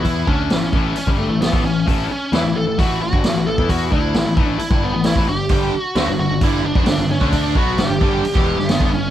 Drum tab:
HH |o---o---o---o---|o---o---o---o---|o---o---o---o---|o---o---o---o---|
SD |----o-------o---|----o-------o---|----o-------o---|----o-------o---|
BD |o-o---o--o---o--|o-------o--o---o|o-o---o--o---o--|o-------o--o---o|

HH |o---o---o---o---|
SD |----o------oo---|
BD |o-o---o--o---o--|